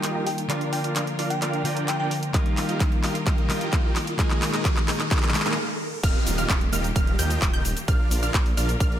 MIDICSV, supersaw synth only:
0, 0, Header, 1, 2, 480
1, 0, Start_track
1, 0, Key_signature, -3, "major"
1, 0, Tempo, 461538
1, 516, Time_signature, 4, 2, 24, 8
1, 9355, End_track
2, 0, Start_track
2, 0, Title_t, "Supersaw synth"
2, 0, Program_c, 0, 81
2, 0, Note_on_c, 0, 65, 83
2, 0, Note_on_c, 0, 67, 80
2, 0, Note_on_c, 0, 70, 80
2, 0, Note_on_c, 0, 75, 80
2, 0, Note_on_c, 0, 79, 98
2, 127, Note_off_c, 0, 65, 0
2, 127, Note_off_c, 0, 67, 0
2, 127, Note_off_c, 0, 70, 0
2, 127, Note_off_c, 0, 75, 0
2, 127, Note_off_c, 0, 79, 0
2, 155, Note_on_c, 0, 67, 90
2, 155, Note_on_c, 0, 70, 85
2, 156, Note_on_c, 0, 65, 99
2, 156, Note_on_c, 0, 75, 87
2, 156, Note_on_c, 0, 79, 106
2, 290, Note_off_c, 0, 65, 0
2, 290, Note_off_c, 0, 67, 0
2, 290, Note_off_c, 0, 70, 0
2, 290, Note_off_c, 0, 75, 0
2, 290, Note_off_c, 0, 79, 0
2, 515, Note_on_c, 0, 65, 82
2, 516, Note_on_c, 0, 62, 92
2, 516, Note_on_c, 0, 70, 84
2, 516, Note_on_c, 0, 74, 83
2, 516, Note_on_c, 0, 77, 98
2, 847, Note_off_c, 0, 62, 0
2, 847, Note_off_c, 0, 65, 0
2, 847, Note_off_c, 0, 70, 0
2, 847, Note_off_c, 0, 74, 0
2, 847, Note_off_c, 0, 77, 0
2, 875, Note_on_c, 0, 62, 80
2, 875, Note_on_c, 0, 65, 78
2, 875, Note_on_c, 0, 70, 75
2, 875, Note_on_c, 0, 74, 75
2, 876, Note_on_c, 0, 77, 89
2, 1091, Note_off_c, 0, 62, 0
2, 1091, Note_off_c, 0, 65, 0
2, 1091, Note_off_c, 0, 70, 0
2, 1091, Note_off_c, 0, 74, 0
2, 1091, Note_off_c, 0, 77, 0
2, 1235, Note_on_c, 0, 70, 72
2, 1235, Note_on_c, 0, 74, 74
2, 1236, Note_on_c, 0, 62, 74
2, 1236, Note_on_c, 0, 65, 75
2, 1236, Note_on_c, 0, 77, 89
2, 1370, Note_off_c, 0, 62, 0
2, 1370, Note_off_c, 0, 65, 0
2, 1370, Note_off_c, 0, 70, 0
2, 1370, Note_off_c, 0, 74, 0
2, 1370, Note_off_c, 0, 77, 0
2, 1476, Note_on_c, 0, 62, 95
2, 1476, Note_on_c, 0, 65, 90
2, 1476, Note_on_c, 0, 70, 87
2, 1476, Note_on_c, 0, 74, 84
2, 1476, Note_on_c, 0, 77, 104
2, 1687, Note_off_c, 0, 62, 0
2, 1687, Note_off_c, 0, 65, 0
2, 1687, Note_off_c, 0, 70, 0
2, 1687, Note_off_c, 0, 74, 0
2, 1687, Note_off_c, 0, 77, 0
2, 1715, Note_on_c, 0, 62, 87
2, 1715, Note_on_c, 0, 65, 81
2, 1715, Note_on_c, 0, 70, 83
2, 1715, Note_on_c, 0, 74, 79
2, 1715, Note_on_c, 0, 79, 98
2, 2047, Note_off_c, 0, 62, 0
2, 2047, Note_off_c, 0, 65, 0
2, 2047, Note_off_c, 0, 70, 0
2, 2047, Note_off_c, 0, 74, 0
2, 2047, Note_off_c, 0, 79, 0
2, 2075, Note_on_c, 0, 70, 88
2, 2075, Note_on_c, 0, 74, 91
2, 2075, Note_on_c, 0, 79, 112
2, 2076, Note_on_c, 0, 62, 96
2, 2076, Note_on_c, 0, 65, 86
2, 2210, Note_off_c, 0, 62, 0
2, 2210, Note_off_c, 0, 65, 0
2, 2210, Note_off_c, 0, 70, 0
2, 2210, Note_off_c, 0, 74, 0
2, 2210, Note_off_c, 0, 79, 0
2, 2435, Note_on_c, 0, 77, 109
2, 2436, Note_on_c, 0, 65, 94
2, 2436, Note_on_c, 0, 67, 88
2, 2436, Note_on_c, 0, 70, 87
2, 2436, Note_on_c, 0, 75, 89
2, 2767, Note_off_c, 0, 65, 0
2, 2767, Note_off_c, 0, 67, 0
2, 2767, Note_off_c, 0, 70, 0
2, 2767, Note_off_c, 0, 75, 0
2, 2767, Note_off_c, 0, 77, 0
2, 2796, Note_on_c, 0, 65, 84
2, 2796, Note_on_c, 0, 67, 76
2, 2796, Note_on_c, 0, 70, 78
2, 2796, Note_on_c, 0, 75, 75
2, 2796, Note_on_c, 0, 77, 92
2, 3011, Note_off_c, 0, 65, 0
2, 3011, Note_off_c, 0, 67, 0
2, 3011, Note_off_c, 0, 70, 0
2, 3011, Note_off_c, 0, 75, 0
2, 3011, Note_off_c, 0, 77, 0
2, 3156, Note_on_c, 0, 65, 81
2, 3156, Note_on_c, 0, 67, 72
2, 3156, Note_on_c, 0, 70, 71
2, 3156, Note_on_c, 0, 75, 70
2, 3156, Note_on_c, 0, 77, 88
2, 3291, Note_off_c, 0, 65, 0
2, 3291, Note_off_c, 0, 67, 0
2, 3291, Note_off_c, 0, 70, 0
2, 3291, Note_off_c, 0, 75, 0
2, 3291, Note_off_c, 0, 77, 0
2, 3396, Note_on_c, 0, 65, 95
2, 3396, Note_on_c, 0, 70, 92
2, 3396, Note_on_c, 0, 75, 88
2, 3396, Note_on_c, 0, 77, 102
2, 3397, Note_on_c, 0, 67, 87
2, 3607, Note_off_c, 0, 65, 0
2, 3607, Note_off_c, 0, 70, 0
2, 3607, Note_off_c, 0, 75, 0
2, 3607, Note_off_c, 0, 77, 0
2, 3608, Note_off_c, 0, 67, 0
2, 3636, Note_on_c, 0, 65, 86
2, 3636, Note_on_c, 0, 67, 81
2, 3636, Note_on_c, 0, 70, 78
2, 3636, Note_on_c, 0, 75, 84
2, 3636, Note_on_c, 0, 79, 95
2, 3967, Note_off_c, 0, 65, 0
2, 3967, Note_off_c, 0, 67, 0
2, 3967, Note_off_c, 0, 70, 0
2, 3967, Note_off_c, 0, 75, 0
2, 3967, Note_off_c, 0, 79, 0
2, 3996, Note_on_c, 0, 65, 99
2, 3996, Note_on_c, 0, 67, 91
2, 3996, Note_on_c, 0, 70, 92
2, 3996, Note_on_c, 0, 75, 90
2, 3996, Note_on_c, 0, 79, 106
2, 4130, Note_off_c, 0, 65, 0
2, 4130, Note_off_c, 0, 67, 0
2, 4130, Note_off_c, 0, 70, 0
2, 4130, Note_off_c, 0, 75, 0
2, 4130, Note_off_c, 0, 79, 0
2, 4355, Note_on_c, 0, 63, 88
2, 4355, Note_on_c, 0, 68, 88
2, 4356, Note_on_c, 0, 58, 99
2, 4356, Note_on_c, 0, 70, 86
2, 4356, Note_on_c, 0, 75, 105
2, 4687, Note_off_c, 0, 58, 0
2, 4687, Note_off_c, 0, 63, 0
2, 4687, Note_off_c, 0, 68, 0
2, 4687, Note_off_c, 0, 70, 0
2, 4687, Note_off_c, 0, 75, 0
2, 4715, Note_on_c, 0, 58, 83
2, 4715, Note_on_c, 0, 63, 78
2, 4715, Note_on_c, 0, 70, 80
2, 4715, Note_on_c, 0, 75, 93
2, 4716, Note_on_c, 0, 68, 78
2, 4931, Note_off_c, 0, 58, 0
2, 4931, Note_off_c, 0, 63, 0
2, 4931, Note_off_c, 0, 68, 0
2, 4931, Note_off_c, 0, 70, 0
2, 4931, Note_off_c, 0, 75, 0
2, 5076, Note_on_c, 0, 58, 76
2, 5076, Note_on_c, 0, 63, 70
2, 5076, Note_on_c, 0, 68, 71
2, 5076, Note_on_c, 0, 70, 70
2, 5076, Note_on_c, 0, 75, 90
2, 5210, Note_off_c, 0, 68, 0
2, 5211, Note_off_c, 0, 58, 0
2, 5211, Note_off_c, 0, 63, 0
2, 5211, Note_off_c, 0, 70, 0
2, 5211, Note_off_c, 0, 75, 0
2, 5316, Note_on_c, 0, 58, 99
2, 5316, Note_on_c, 0, 63, 89
2, 5316, Note_on_c, 0, 68, 90
2, 5316, Note_on_c, 0, 70, 86
2, 5316, Note_on_c, 0, 75, 111
2, 5527, Note_off_c, 0, 58, 0
2, 5527, Note_off_c, 0, 63, 0
2, 5527, Note_off_c, 0, 68, 0
2, 5527, Note_off_c, 0, 70, 0
2, 5527, Note_off_c, 0, 75, 0
2, 5676, Note_on_c, 0, 58, 87
2, 5676, Note_on_c, 0, 63, 80
2, 5676, Note_on_c, 0, 68, 79
2, 5676, Note_on_c, 0, 70, 76
2, 5676, Note_on_c, 0, 77, 89
2, 5796, Note_off_c, 0, 58, 0
2, 5796, Note_off_c, 0, 63, 0
2, 5796, Note_off_c, 0, 68, 0
2, 5796, Note_off_c, 0, 70, 0
2, 5796, Note_off_c, 0, 77, 0
2, 6276, Note_on_c, 0, 65, 92
2, 6276, Note_on_c, 0, 67, 91
2, 6276, Note_on_c, 0, 70, 88
2, 6276, Note_on_c, 0, 75, 91
2, 6276, Note_on_c, 0, 77, 106
2, 6607, Note_off_c, 0, 65, 0
2, 6607, Note_off_c, 0, 67, 0
2, 6607, Note_off_c, 0, 70, 0
2, 6607, Note_off_c, 0, 75, 0
2, 6607, Note_off_c, 0, 77, 0
2, 6636, Note_on_c, 0, 65, 85
2, 6636, Note_on_c, 0, 67, 75
2, 6636, Note_on_c, 0, 70, 76
2, 6636, Note_on_c, 0, 75, 75
2, 6636, Note_on_c, 0, 77, 94
2, 6851, Note_off_c, 0, 65, 0
2, 6851, Note_off_c, 0, 67, 0
2, 6851, Note_off_c, 0, 70, 0
2, 6851, Note_off_c, 0, 75, 0
2, 6851, Note_off_c, 0, 77, 0
2, 6996, Note_on_c, 0, 65, 82
2, 6996, Note_on_c, 0, 67, 69
2, 6996, Note_on_c, 0, 70, 76
2, 6996, Note_on_c, 0, 75, 74
2, 6996, Note_on_c, 0, 77, 88
2, 7130, Note_off_c, 0, 75, 0
2, 7131, Note_off_c, 0, 65, 0
2, 7131, Note_off_c, 0, 67, 0
2, 7131, Note_off_c, 0, 70, 0
2, 7131, Note_off_c, 0, 77, 0
2, 7235, Note_on_c, 0, 65, 97
2, 7235, Note_on_c, 0, 67, 90
2, 7235, Note_on_c, 0, 70, 88
2, 7235, Note_on_c, 0, 75, 93
2, 7235, Note_on_c, 0, 77, 109
2, 7447, Note_off_c, 0, 65, 0
2, 7447, Note_off_c, 0, 67, 0
2, 7447, Note_off_c, 0, 70, 0
2, 7447, Note_off_c, 0, 75, 0
2, 7447, Note_off_c, 0, 77, 0
2, 7476, Note_on_c, 0, 65, 88
2, 7476, Note_on_c, 0, 67, 83
2, 7476, Note_on_c, 0, 70, 81
2, 7476, Note_on_c, 0, 75, 83
2, 7476, Note_on_c, 0, 79, 94
2, 7807, Note_off_c, 0, 65, 0
2, 7807, Note_off_c, 0, 67, 0
2, 7807, Note_off_c, 0, 70, 0
2, 7807, Note_off_c, 0, 75, 0
2, 7807, Note_off_c, 0, 79, 0
2, 7835, Note_on_c, 0, 75, 90
2, 7836, Note_on_c, 0, 65, 97
2, 7836, Note_on_c, 0, 67, 89
2, 7836, Note_on_c, 0, 70, 88
2, 7836, Note_on_c, 0, 79, 107
2, 7970, Note_off_c, 0, 67, 0
2, 7970, Note_off_c, 0, 70, 0
2, 7970, Note_off_c, 0, 75, 0
2, 7970, Note_off_c, 0, 79, 0
2, 7971, Note_off_c, 0, 65, 0
2, 8195, Note_on_c, 0, 65, 87
2, 8195, Note_on_c, 0, 70, 88
2, 8195, Note_on_c, 0, 74, 87
2, 8195, Note_on_c, 0, 77, 109
2, 8196, Note_on_c, 0, 62, 98
2, 8527, Note_off_c, 0, 62, 0
2, 8527, Note_off_c, 0, 65, 0
2, 8527, Note_off_c, 0, 70, 0
2, 8527, Note_off_c, 0, 74, 0
2, 8527, Note_off_c, 0, 77, 0
2, 8555, Note_on_c, 0, 70, 76
2, 8555, Note_on_c, 0, 77, 97
2, 8556, Note_on_c, 0, 62, 82
2, 8556, Note_on_c, 0, 65, 78
2, 8556, Note_on_c, 0, 74, 79
2, 8771, Note_off_c, 0, 62, 0
2, 8771, Note_off_c, 0, 65, 0
2, 8771, Note_off_c, 0, 70, 0
2, 8771, Note_off_c, 0, 74, 0
2, 8771, Note_off_c, 0, 77, 0
2, 8916, Note_on_c, 0, 62, 80
2, 8916, Note_on_c, 0, 65, 73
2, 8916, Note_on_c, 0, 70, 76
2, 8916, Note_on_c, 0, 74, 74
2, 8916, Note_on_c, 0, 77, 84
2, 9050, Note_off_c, 0, 65, 0
2, 9050, Note_off_c, 0, 74, 0
2, 9051, Note_off_c, 0, 62, 0
2, 9051, Note_off_c, 0, 70, 0
2, 9051, Note_off_c, 0, 77, 0
2, 9156, Note_on_c, 0, 62, 100
2, 9156, Note_on_c, 0, 65, 86
2, 9156, Note_on_c, 0, 70, 91
2, 9156, Note_on_c, 0, 74, 87
2, 9156, Note_on_c, 0, 77, 110
2, 9355, Note_off_c, 0, 62, 0
2, 9355, Note_off_c, 0, 65, 0
2, 9355, Note_off_c, 0, 70, 0
2, 9355, Note_off_c, 0, 74, 0
2, 9355, Note_off_c, 0, 77, 0
2, 9355, End_track
0, 0, End_of_file